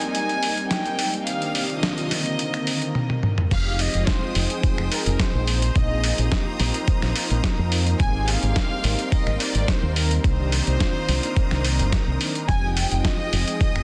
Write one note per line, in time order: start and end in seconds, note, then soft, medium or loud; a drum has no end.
0.00 1.23 G3 medium
0.00 1.23 A#3 medium
0.00 1.24 C4 medium
0.00 1.24 D#4 medium
0.00 1.25 D#4 medium
0.00 1.24 A#4 loud
0.00 1.25 A#4 medium
0.00 1.23 C5 medium
0.00 0.14 G#5 loud
0.00 closed hi-hat soft
0.15 0.67 G#5 loud
0.15 closed hi-hat medium
0.29 closed hi-hat soft
0.43 open hi-hat loud
0.57 closed hi-hat soft
0.71 1.23 G5 loud
0.71 snare loud
0.71 closed hi-hat medium
0.86 closed hi-hat soft
0.99 open hi-hat loud
1.14 closed hi-hat soft
1.27 2.94 C3 medium
1.27 1.66 D#3 medium
1.27 2.94 A#3 medium
1.27 1.66 A#3 medium
1.27 1.66 C4 medium
1.27 1.67 D4 medium
1.27 1.67 G4 medium
1.27 1.83 F5 loud
1.27 2.94 D#6 medium
1.27 closed hi-hat medium
1.42 closed hi-hat soft
1.55 open hi-hat loud
1.69 2.08 D#3 loud
1.69 2.08 A#3 medium
1.69 2.08 C4 medium
1.69 2.08 D4 medium
1.69 2.08 F4 loud
1.69 closed hi-hat soft
1.83 3.19 D#5 medium
1.83 snare loud
1.83 closed hi-hat medium
1.98 closed hi-hat soft
2.10 2.96 D3 medium
2.10 2.95 D#3 medium
2.10 2.95 A#3 medium
2.10 2.95 C4 medium
2.10 2.96 A#4 loud
2.10 snare soft
2.10 open hi-hat loud
2.26 closed hi-hat soft
2.39 closed hi-hat medium
2.54 finger snap medium
2.54 closed hi-hat soft
2.67 open hi-hat loud
2.82 closed hi-hat medium
2.95 high tom medium
3.10 high tom medium
3.23 mid tom medium
3.38 mid tom medium
3.51 3.87 F1 loud
3.51 3.90 F3 medium
3.51 3.91 G#3 medium
3.51 5.46 G#3 medium
3.51 3.91 C4 medium
3.51 3.91 D#4 medium
3.51 3.91 G4 medium
3.51 3.77 F5 loud
3.51 5.46 G5 medium
3.51 5.46 D#6 medium
3.51 kick loud
3.51 closed hi-hat medium
3.51 crash loud
3.79 4.07 D#5 loud
3.79 open hi-hat loud
3.94 4.03 F1 medium
3.94 4.32 F3 loud
3.94 4.32 G#3 medium
3.94 4.32 C4 medium
3.94 4.32 D#4 medium
3.94 4.33 F4 loud
3.94 closed hi-hat medium
4.07 4.62 C5 loud
4.07 kick loud
4.07 snare loud
4.07 closed hi-hat medium
4.34 4.46 F1 loud
4.34 5.45 F3 medium
4.34 5.46 G#3 medium
4.34 5.46 C4 medium
4.34 5.46 D#4 medium
4.34 5.47 G#4 loud
4.34 open hi-hat loud
4.50 closed hi-hat medium
4.63 4.89 C5 loud
4.63 muted fingered electric bass stroke soft
4.63 kick loud
4.63 closed hi-hat medium
4.78 4.87 F1 medium
4.78 finger snap medium
4.91 5.20 A#4 medium
4.91 open hi-hat loud
5.06 5.15 F1 medium
5.06 closed hi-hat medium
5.20 5.76 C5 medium
5.20 kick loud
5.20 snare loud
5.20 closed hi-hat medium
5.35 5.69 A#1 loud
5.47 7.97 C5 medium
5.47 7.97 A#5 medium
5.47 7.97 D#6 medium
5.47 open hi-hat loud
5.62 closed hi-hat medium
5.75 6.11 A#1 loud
5.75 6.15 F3 medium
5.75 6.15 A#3 medium
5.75 6.15 C4 medium
5.75 6.15 D#4 medium
5.75 6.15 G#4 loud
5.75 6.32 D#5 loud
5.75 kick loud
5.75 closed hi-hat medium
6.04 open hi-hat loud
6.18 6.28 A#1 medium
6.18 6.56 F3 loud
6.18 6.56 A#3 medium
6.18 6.57 C4 medium
6.18 6.57 D#4 medium
6.18 6.57 G4 loud
6.18 closed hi-hat medium
6.32 kick loud
6.32 snare loud
6.32 closed hi-hat medium
6.59 6.70 A#1 loud
6.59 7.96 F3 medium
6.59 7.96 A#3 medium
6.59 7.97 C4 medium
6.59 7.97 D#4 medium
6.59 7.97 A#4 loud
6.59 snare soft
6.59 open hi-hat loud
6.74 closed hi-hat medium
6.88 kick loud
6.88 closed hi-hat medium
7.02 7.12 A#1 medium
7.02 finger snap medium
7.02 snare soft
7.16 open hi-hat loud
7.30 7.40 A#1 medium
7.30 closed hi-hat medium
7.44 kick loud
7.44 snare loud
7.44 closed hi-hat medium
7.59 7.93 F2 loud
7.72 open hi-hat loud
7.87 closed hi-hat medium
7.99 8.35 G#1 loud
7.99 8.39 A#3 medium
7.99 8.39 C4 medium
7.99 8.39 D#4 medium
7.99 8.39 G4 medium
7.99 8.39 G#4 loud
7.99 10.22 A#4 medium
7.99 10.22 G5 medium
7.99 8.26 G#5 loud
7.99 10.22 C6 medium
7.99 kick loud
7.99 closed hi-hat medium
8.28 9.12 F5 loud
8.28 open hi-hat loud
8.42 8.52 G#1 medium
8.42 8.81 G3 loud
8.42 8.81 A#3 medium
8.42 8.81 C4 medium
8.42 8.81 D#4 medium
8.42 8.81 G4 loud
8.42 closed hi-hat medium
8.56 kick loud
8.56 snare loud
8.56 closed hi-hat medium
8.83 8.94 G#1 loud
8.83 10.20 G3 medium
8.83 10.21 A#3 medium
8.83 10.21 C4 medium
8.83 10.21 D#4 medium
8.83 10.21 A#4 loud
8.83 open hi-hat loud
8.99 closed hi-hat medium
9.12 9.38 D#5 loud
9.12 muted fingered electric bass stroke soft
9.12 kick loud
9.12 closed hi-hat medium
9.27 9.36 G#1 medium
9.27 finger snap medium
9.40 9.66 D5 medium
9.40 open hi-hat loud
9.55 9.64 G#1 medium
9.55 closed hi-hat medium
9.68 9.96 C5 medium
9.68 kick loud
9.68 snare loud
9.68 closed hi-hat soft
9.83 10.17 D#2 loud
9.96 10.22 A#4 medium
9.96 open hi-hat loud
10.11 closed hi-hat medium
10.24 10.59 C2 loud
10.24 10.63 D#3 medium
10.24 10.63 A#3 medium
10.24 10.64 C4 medium
10.24 10.64 D4 medium
10.24 10.64 G4 loud
10.24 12.46 C5 medium
10.24 11.89 C5 loud
10.24 12.46 A#5 medium
10.24 12.46 D#6 medium
10.24 kick loud
10.24 closed hi-hat medium
10.52 open hi-hat loud
10.66 10.76 C2 medium
10.66 11.05 D#3 loud
10.66 11.05 A#3 medium
10.66 11.05 C4 medium
10.66 11.05 D4 medium
10.66 11.05 F4 loud
10.66 closed hi-hat medium
10.80 kick loud
10.80 snare loud
10.80 closed hi-hat soft
11.07 11.19 C2 loud
11.07 12.04 D#3 medium
11.07 12.04 A#3 medium
11.07 12.04 C4 medium
11.07 12.05 D4 medium
11.07 12.05 A#4 loud
11.07 snare soft
11.07 open hi-hat loud
11.23 closed hi-hat medium
11.36 kick loud
11.36 closed hi-hat soft
11.51 11.81 C2 medium
11.51 finger snap medium
11.51 snare soft
11.65 open hi-hat loud
11.79 11.98 G1 medium
11.79 closed hi-hat medium
11.92 kick loud
11.92 snare loud
11.92 closed hi-hat soft
12.07 12.16 C2 medium
12.07 12.45 D#3 medium
12.07 12.45 A#3 medium
12.07 12.45 C4 medium
12.07 12.46 D4 medium
12.07 12.46 A#4 medium
12.21 open hi-hat loud
12.35 closed hi-hat medium
12.48 12.84 F1 medium
12.48 12.87 F3 medium
12.48 12.88 G#3 medium
12.48 13.83 G#3 medium
12.48 12.88 C4 medium
12.48 12.88 D#4 medium
12.48 12.88 G4 loud
12.48 13.83 G5 medium
12.48 12.75 G#5 loud
12.48 13.83 D#6 medium
12.48 kick loud
12.48 closed hi-hat medium
12.77 13.03 G5 loud
12.77 open hi-hat loud
12.91 13.00 F1 medium
12.91 13.29 F3 loud
12.91 13.29 G#3 medium
12.91 13.30 C4 medium
12.91 13.30 D#4 medium
12.91 13.30 F4 loud
12.91 closed hi-hat medium
13.05 13.57 D#5 loud
13.05 kick loud
13.05 snare loud
13.05 closed hi-hat soft
13.32 13.43 F1 loud
13.32 13.83 F3 medium
13.32 13.83 G#3 medium
13.32 13.83 C4 medium
13.32 13.83 D#4 medium
13.32 13.83 G#4 loud
13.32 open hi-hat loud
13.48 closed hi-hat medium
13.61 13.83 D#5 loud
13.61 muted fingered electric bass stroke soft
13.61 kick loud
13.61 closed hi-hat soft
13.76 13.83 F1 medium
13.76 finger snap medium